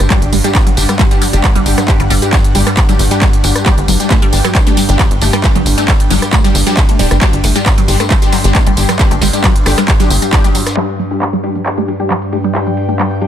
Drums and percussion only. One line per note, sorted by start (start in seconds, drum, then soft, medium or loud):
0.10 kick loud
0.10 clap loud
0.10 closed hi-hat medium
0.10 ride medium
0.10 tambourine soft
0.22 closed hi-hat medium
0.33 open hi-hat loud
0.33 ride medium
0.33 tambourine medium
0.44 snare soft
0.44 closed hi-hat medium
0.44 tambourine soft
0.55 kick loud
0.55 snare loud
0.55 clap loud
0.55 closed hi-hat medium
0.55 ride medium
0.55 tambourine soft
0.67 closed hi-hat medium
0.77 open hi-hat loud
0.77 ride medium
0.77 tambourine medium
0.89 cross-stick medium
0.89 closed hi-hat medium
0.89 tambourine soft
0.99 kick loud
0.99 clap loud
0.99 closed hi-hat medium
0.99 ride medium
0.99 tambourine soft
1.11 closed hi-hat medium
1.11 tambourine soft
1.21 open hi-hat loud
1.21 ride medium
1.21 tambourine medium
1.33 closed hi-hat medium
1.33 tambourine soft
1.44 kick loud
1.44 snare loud
1.44 clap loud
1.44 closed hi-hat medium
1.44 ride medium
1.44 tambourine soft
1.56 closed hi-hat medium
1.66 open hi-hat loud
1.66 ride medium
1.66 tambourine medium
1.78 cross-stick loud
1.78 closed hi-hat medium
1.78 tambourine soft
1.88 kick loud
1.88 clap loud
1.88 closed hi-hat medium
1.88 ride medium
1.88 tambourine soft
2.00 closed hi-hat medium
2.10 open hi-hat loud
2.10 ride medium
2.10 tambourine medium
2.22 closed hi-hat medium
2.22 tambourine soft
2.33 kick loud
2.33 snare loud
2.33 clap loud
2.33 closed hi-hat medium
2.33 ride medium
2.33 tambourine soft
2.44 closed hi-hat medium
2.55 open hi-hat loud
2.55 ride medium
2.55 tambourine medium
2.67 cross-stick medium
2.67 closed hi-hat medium
2.67 tambourine soft
2.77 kick loud
2.77 clap loud
2.77 closed hi-hat medium
2.77 ride medium
2.77 tambourine soft
2.89 closed hi-hat medium
2.89 tambourine soft
2.99 snare soft
2.99 open hi-hat loud
2.99 ride medium
2.99 tambourine medium
3.11 closed hi-hat medium
3.11 ride soft
3.11 tambourine soft
3.21 kick loud
3.21 snare loud
3.21 clap loud
3.21 closed hi-hat medium
3.21 ride medium
3.21 tambourine soft
3.33 snare soft
3.33 closed hi-hat medium
3.44 open hi-hat loud
3.44 ride medium
3.44 tambourine medium
3.56 cross-stick loud
3.56 closed hi-hat medium
3.56 tambourine soft
3.66 kick loud
3.66 clap loud
3.66 closed hi-hat medium
3.66 ride medium
3.66 tambourine soft
3.78 closed hi-hat medium
3.88 open hi-hat loud
3.88 ride medium
3.88 tambourine medium
4.00 snare soft
4.00 closed hi-hat medium
4.00 tambourine soft
4.10 kick loud
4.10 snare loud
4.10 clap loud
4.10 closed hi-hat medium
4.10 ride medium
4.10 tambourine soft
4.22 closed hi-hat medium
4.33 open hi-hat medium
4.33 ride medium
4.33 tambourine medium
4.45 cross-stick medium
4.45 closed hi-hat medium
4.45 tambourine soft
4.55 kick loud
4.55 clap loud
4.55 closed hi-hat medium
4.55 ride medium
4.55 tambourine soft
4.67 closed hi-hat medium
4.67 tambourine soft
4.77 open hi-hat loud
4.77 ride medium
4.77 tambourine medium
4.89 closed hi-hat medium
4.89 tambourine soft
4.99 kick loud
4.99 snare loud
4.99 clap loud
4.99 closed hi-hat medium
4.99 ride medium
4.99 tambourine soft
5.11 closed hi-hat medium
5.21 open hi-hat medium
5.21 ride medium
5.21 tambourine medium
5.33 cross-stick loud
5.33 closed hi-hat medium
5.33 tambourine soft
5.44 kick loud
5.44 clap loud
5.44 closed hi-hat medium
5.44 ride medium
5.44 tambourine soft
5.55 closed hi-hat medium
5.66 open hi-hat loud
5.66 ride medium
5.66 tambourine medium
5.78 closed hi-hat medium
5.78 tambourine soft
5.88 kick loud
5.88 snare loud
5.88 clap loud
5.88 closed hi-hat medium
5.88 ride medium
5.88 tambourine soft
6.00 closed hi-hat medium
6.10 open hi-hat medium
6.10 ride medium
6.10 tambourine medium
6.22 cross-stick medium
6.22 closed hi-hat medium
6.22 tambourine soft
6.33 kick loud
6.33 clap loud
6.33 closed hi-hat medium
6.33 ride medium
6.33 tambourine soft
6.45 closed hi-hat medium
6.45 tambourine soft
6.55 snare soft
6.55 open hi-hat loud
6.55 ride medium
6.55 tambourine medium
6.67 closed hi-hat medium
6.67 ride soft
6.67 tambourine soft
6.77 kick loud
6.77 snare loud
6.77 clap loud
6.77 closed hi-hat medium
6.77 ride medium
6.77 tambourine soft
6.89 snare soft
6.89 closed hi-hat medium
6.99 open hi-hat medium
6.99 ride medium
6.99 tambourine medium
7.11 cross-stick loud
7.11 closed hi-hat medium
7.11 tambourine soft
7.21 kick loud
7.21 clap loud
7.21 closed hi-hat medium
7.21 ride medium
7.21 tambourine soft
7.33 closed hi-hat medium
7.44 open hi-hat loud
7.44 ride medium
7.44 tambourine medium
7.56 snare soft
7.56 closed hi-hat medium
7.56 tambourine soft
7.66 kick loud
7.66 snare loud
7.66 clap loud
7.66 closed hi-hat medium
7.66 ride medium
7.66 tambourine soft
7.78 closed hi-hat medium
7.88 open hi-hat medium
7.88 ride medium
7.88 tambourine medium
8.00 cross-stick medium
8.00 closed hi-hat medium
8.00 tambourine soft
8.10 kick loud
8.10 clap loud
8.10 closed hi-hat medium
8.10 ride medium
8.10 tambourine soft
8.22 closed hi-hat medium
8.22 tambourine soft
8.32 snare loud
8.32 open hi-hat loud
8.32 ride medium
8.32 tambourine medium
8.44 closed hi-hat medium
8.44 tambourine soft
8.55 kick loud
8.55 snare loud
8.55 clap loud
8.55 closed hi-hat medium
8.55 ride medium
8.55 tambourine soft
8.66 closed hi-hat medium
8.77 open hi-hat medium
8.77 ride medium
8.77 tambourine medium
8.89 cross-stick medium
8.89 closed hi-hat medium
8.89 tambourine soft
8.99 kick loud
8.99 clap loud
8.99 closed hi-hat medium
8.99 ride medium
8.99 tambourine soft
9.11 closed hi-hat medium
9.21 snare loud
9.21 open hi-hat loud
9.21 ride medium
9.21 tambourine medium
9.33 closed hi-hat medium
9.33 tambourine soft
9.44 kick loud
9.44 snare loud
9.44 clap loud
9.44 closed hi-hat medium
9.44 ride medium
9.44 tambourine soft
9.56 closed hi-hat medium
9.66 cross-stick medium
9.66 snare loud
9.66 open hi-hat medium
9.66 ride medium
9.66 tambourine medium
9.78 cross-stick medium
9.78 snare soft
9.78 closed hi-hat medium
9.78 tambourine soft
9.88 kick loud
9.88 clap loud
9.88 closed hi-hat medium
9.88 ride medium
9.88 tambourine soft
10.00 snare loud
10.00 closed hi-hat medium
10.00 ride medium
10.00 tambourine soft
10.10 snare soft
10.10 open hi-hat loud
10.10 ride medium
10.10 tambourine medium
10.22 closed hi-hat medium
10.22 ride medium
10.22 tambourine soft
10.33 kick loud
10.33 snare loud
10.33 clap loud
10.33 closed hi-hat medium
10.33 ride medium
10.33 tambourine soft
10.44 closed hi-hat medium
10.44 tambourine soft
10.55 open hi-hat medium
10.55 ride medium
10.55 tambourine medium
10.67 cross-stick medium
10.67 snare loud
10.67 closed hi-hat medium
10.67 ride medium
10.67 tambourine soft
10.77 clap loud
10.77 crash medium
10.77 ride medium
10.89 closed hi-hat medium
10.99 ride medium
11.11 snare soft
11.11 closed hi-hat medium
11.22 clap loud
11.22 closed hi-hat medium
11.22 ride medium
11.33 closed hi-hat medium
11.44 ride medium
11.55 closed hi-hat medium
11.66 clap loud
11.66 closed hi-hat medium
11.66 ride medium
11.78 closed hi-hat medium
11.88 ride medium
12.00 closed hi-hat medium
12.10 clap loud
12.10 closed hi-hat medium
12.10 ride medium
12.22 closed hi-hat medium
12.33 ride medium
12.44 closed hi-hat medium
12.55 clap loud
12.55 closed hi-hat medium
12.55 ride medium
12.67 closed hi-hat medium
12.77 ride medium
12.89 closed hi-hat medium
12.99 clap loud
12.99 closed hi-hat medium
12.99 ride medium
13.11 closed hi-hat medium
13.22 ride medium